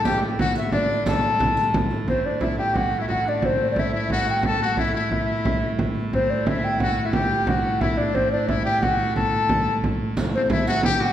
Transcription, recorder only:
\new Staff \with { instrumentName = "Recorder" } { \time 3/4 \key a \dorian \tempo 4 = 178 g''8 r8 fis''8 e''8 d''8 d''8 | a''2 r4 | c''8 d''8 e''8 g''8 fis''8. e''16 | fis''8 d''8 c''8. d''16 e''4 |
fis''8 g''8 a''8 fis''8 e''8 e''8 | e''2 r4 | c''8 d''8 e''8 g''8 fis''8. e''16 | g''4 fis''4 e''8 d''8 |
c''8 d''8 e''8 g''8 fis''4 | a''2 r4 | r8 c''8 e''8 fis''8 g''16. g''32 fis''8 | }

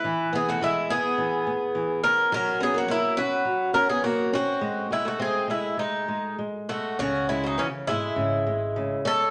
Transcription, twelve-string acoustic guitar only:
\new Staff \with { instrumentName = "Twelve-string acoustic guitar" } { \time 4/4 \key cis \minor \tempo 4 = 103 e'8 b16 a16 gis8 b2 cis'8 | cis'8 b16 ais16 ais8 fis'4 cis'16 b16 ais8 bis8~ | bis8 gis16 a16 bis8 gis8 gis4 r8 a8 | cis'8 gis16 fis16 e8 gis2 cis'8 | }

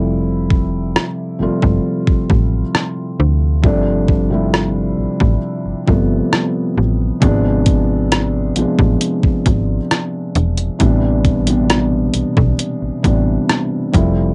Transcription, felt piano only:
\new Staff \with { instrumentName = "Felt piano" } { \clef bass \time 4/4 \key a \minor \tempo 4 = 67 <c f g a e'>4 r8 <c f g a f'>4~ <c f g a f'>16 r4 r16 | <c f g a d'>8 r16 <c f g a e'>4~ <c f g a e'>16 r8 <c f g a b>4 r8 | <c f gis b d'>4 r8 <c f gis b d'>4~ <c f gis b d'>16 r4 r16 | <c e g b d'>8 r16 <b, c e g b d'>4~ <b, c e g b d'>16 r8 <c e g b d'>4 <c f g a e'>8 | }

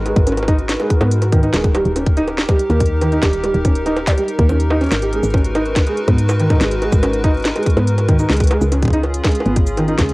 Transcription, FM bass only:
\new Staff \with { instrumentName = "FM bass" } { \clef bass \time 4/4 \key gis \dorian \tempo 4 = 142 gis,,16 gis,,4. r8 gis,4~ gis,16 dis,,8~ | dis,,16 dis,,4. r8 dis,4~ dis,16 dis,,8~ | dis,,16 dis,,4. r8 dis,4~ dis,16 gis,,8~ | gis,,16 gis,,4. r8 gis,4~ gis,16 gis,,8~ |
gis,,16 gis,,4. r8 gis,4~ gis,16 cis,8~ | cis,16 cis,4. r8 gis,,4~ gis,,16 cis,8 | }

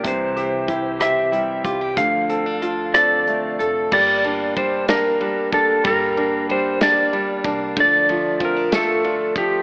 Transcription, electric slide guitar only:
\new Staff \with { instrumentName = "Electric slide guitar" } { \time 6/8 \key g \minor \tempo 4. = 62 c''4. e''4 r8 | f''4. d''4 r8 | d''4 c''8 bes'4 a'8 | bes'4 c''8 d''4 r8 |
d''4 bes'8 a'4 g'8 | }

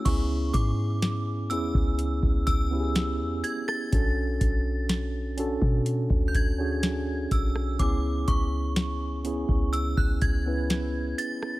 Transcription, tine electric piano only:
\new Staff \with { instrumentName = "Tine electric piano" } { \time 4/4 \key cis \phrygian \tempo 4 = 62 <b cis' e' gis'>4 r8 <b cis' e' gis'>8. r8 <b cis' e' g' gis'>8. r8 | <cis' d' fis' a'>4 r8 <cis' d' fis' a'>8. r8 <cis' d' fis' gis'>8. r8 | <b cis' e' gis'>4 r8 <b cis' e' gis'>8. r8 <b cis' e' b'>8. r8 | }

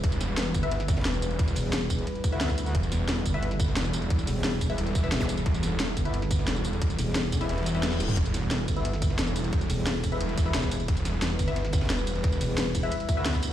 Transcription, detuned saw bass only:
\new Staff \with { instrumentName = "Detuned saw bass" } { \clef bass \time 4/4 \key e \minor \tempo 4 = 177 e,,4. r4. e,,4~ | e,,8 r2. r8 | e,,4. r4. e,,4~ | e,,8 r4. e,,4 r4 |
e,,4. r4. e,,4~ | e,,8 r4. e,,2 | e,,4. r4. e,,4~ | e,,8 r4. e,,4 r4 |
e,,4. r4. e,,4~ | e,,8 r2. r8 | }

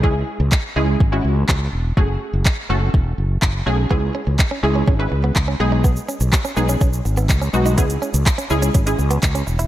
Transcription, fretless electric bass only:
\new Staff \with { instrumentName = "Fretless electric bass" } { \clef bass \time 4/4 \key cis \minor \tempo 4 = 124 cis,8 r16 cis,16 r8 cis,8 gis,,8 cis,8 r8 e,,8 | fis,,8 r16 fis,,16 r8 fis,,8 e,,8 fis,,8 fis,,8 b,,8 | cis,8 r16 cis,16 r8 cis,8 gis,,8 cis,8 cis,8 b,,8~ | b,,8 r16 b,,16 r8 b,,8 b,,8 gis,,8 cis,8 b,,8 |
cis,8 r16 cis,16 r8 cis,8 gis,,8 cis,8 cis,8 e,,8 | }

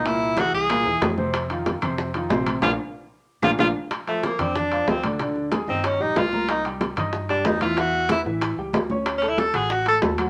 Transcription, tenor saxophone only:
\new Staff \with { instrumentName = "Tenor saxophone" } { \time 4/4 \key bes \mixolydian \tempo 4 = 187 e'4 ges'8 gis'2 r8 | r1 | f'8 r2 f'8 f'8 r8 | \key d \phrygian r8 a8 bes8 c'8 d'4 c'8 r8 |
r4. c'8 des'8 ees'8 f'4 | ees'8 r2 d'8 ees'8 f'8 | fis'4 e'8 r2 r8 | \tuplet 3/2 { r8 cis'8 e'8 } a'8 aes'8 fis'8 a'8 r4 | }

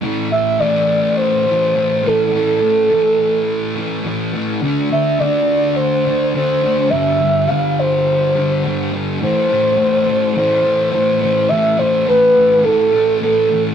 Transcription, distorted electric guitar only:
\new Staff \with { instrumentName = "Distorted electric guitar" } { \clef bass \time 4/4 \key a \minor \tempo 4 = 105 <a, e a>8 <e a>8 <a, e a>4. <e a>8 <a, e a>8 <e a>8 | <a, e a>8 <e a>8 <a, e a>4. <e a>8 <a, e a>8 <e a>8 | <d a d'>8 <a d'>8 <d a d'>4. <a d'>8 <d a d'>8 <a d'>8 | <g, d g>8 <d g>8 <g, d g>4. <d g>8 <g, d g>8 <d g>8 |
<a, e a>8 <e a>8 <a, e a>8 <e a>8 <a, e a>8 <e a>8 <a, e a>8 <e a>8 | <a, e a>8 <e a>8 <a, e a>8 <e a>8 <a, e a>8 <e a>8 <a, e a>8 <e a>8 | }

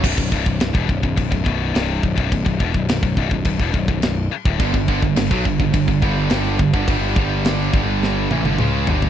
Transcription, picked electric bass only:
\new Staff \with { instrumentName = "Picked electric bass" } { \clef bass \time 4/4 \key b \minor \tempo 4 = 105 b,,,16 b,,,16 c,,16 b,,,16 b,,,16 e,,16 b,,,16 b,,,16 b,,,16 b,,,16 b,,,8 c,,8 b,,,16 b,,,16 | b,,,16 b,,,16 e,,16 b,,,16 b,,,16 b,,,16 b,,,16 b,,,16 b,,,16 e,,16 b,,,16 b,,,16 b,,,8 r16 d,,16 | g,,16 g,,16 g,,16 g,,16 g,,16 b,,16 g,,16 g,,16 g,,16 g,,16 g,,8 g,,8 g,,16 g,,16 | g,,8 g,,4 g,,4 a,,16 g,,16 cis,8 g,,8 | }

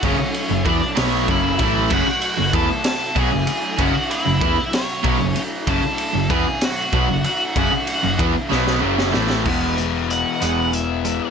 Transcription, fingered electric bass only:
\new Staff \with { instrumentName = "Fingered electric bass" } { \clef bass \time 6/8 \key fis \minor \tempo 4. = 64 fis,,16 r8 fis,,16 e,16 r16 b,,8 fis,,8 a,,8 | fis,,16 r8 fis,,16 e,16 r8. b,,16 fis,,16 r8 | fis,,16 r8 fis,,16 e,16 r8. b,,16 fis,,16 r8 | fis,,16 r8 fis,,16 e,16 r8. b,,16 fis,,16 r8 |
fis,,16 r8 fis,,16 e,16 r16 b,,8 fis,,8 a,,8 | e,,4. e,,4. | }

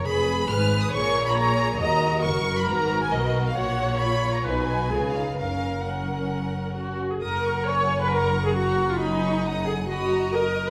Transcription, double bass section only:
\new Staff \with { instrumentName = "Double bass section" } { \clef bass \time 4/4 \key fis \major \tempo 4 = 135 f,,4 aes,,4 ais,,2 | dis,4 fis,,4 gis,,4 b,,4 | ais,,2 b,,4 cis,4 | fis,,2.~ fis,,8 r8 |
fis,,1~ | fis,,1 | }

